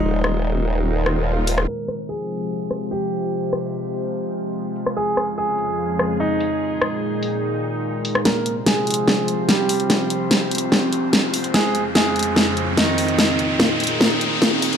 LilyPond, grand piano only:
\new Staff \with { instrumentName = "Grand piano" } { \time 4/4 \key f \minor \tempo 4 = 146 ees'1 | bes'8 r8 aes'2 g'4~ | g'1 | aes'8 r8 aes'2 ees'4~ |
ees'1 | <bes bes'>8 r8 <aes aes'>2 <g g'>4~ | <g g'>1 | <aes aes'>8 r8 <aes aes'>2 <ees ees'>4~ |
<ees ees'>1 | }